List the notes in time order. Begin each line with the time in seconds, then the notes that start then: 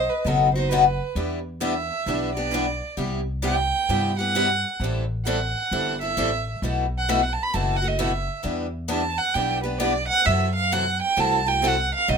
Already playing: C5 D#5
0.09 B4
0.25 F#1 B2 D#3 F#3 B3 D#4 F#4 A4 B4
0.54 B3 D#4 F#4 C5
0.69 B2 D#3 F#3 B3 D#4 B4
0.73 F#4
1.15 E2 E3 G3 B3 D4 E4 G4 B4
1.61 E3 G3 B3 D4 E4 G4 B4 E5
2.06 B1 E3 G3 B3 D4 E4 G4 B4
2.35 B3 D4 G4 D5
2.51 E3 G3 B3 D4 E4 G4 B4
2.97 C2 C3 G3 B3 E4 G4
3.42 C3 G3 B3 E4 G4 G5
3.89 G2 C3 G3 B3 E4 G4
4.19 B3 E4 G4 F#5
4.35 C3 G3 B3 E4 G4
4.80 A1 E3 E4
4.84 G3 C4 A4
5.25 E3 G3 C4 E4 A4 F#5
5.71 G1 E3 G3 C4 E4 A4
6.01 C4 E4 A4 E5
6.17 A1 E3 G3 C4 E4 A4
6.62 B1 B2 E3 A3 E4 F#4 B4
6.98 F#5
7.09 B2 E3 A3 E4 F#4 B4 E5
7.22 F#5
7.33 A5
7.43 B5
7.53 F#1 B2 E3 A3 E4 F#4 B4 A5
7.76 F#5
7.82 A3 E4 F#4
7.88 D#5
7.99 B2 E3 A3 E4 F#4 B4 E5
8.43 E2 E3 G3 B3 D4 E4 G4 B4
8.88 E3 G3 B3 D4 E4 G4 B4 A5
9.18 F#5
9.34 B1 E3 G3 B3 D4 E4 G4 B4 G5
9.63 B3 D4 G4 B4
9.78 E3 G3 B3 D4 E4 G4 B4 D5
10.08 F#5
10.24 F#2 C3 E3 F#3 A3 C4 E4 F#4 E5
10.29 A4
10.55 F5
10.72 C3 E3 F#3 A3 C4 E4 F#4 A4 F#5
11.02 G5
11.16 C2 C3 E3 F#3 A3 C4 E4 F#4 A4 A5
11.46 A3 E4 F#4 G5
11.62 C3 E3 F#3 A3 C4 E4 F#4 A4
11.67 F#5
11.94 F5
12.08 B1 B2 F#3 A3 D#4 F#4 B4 D#5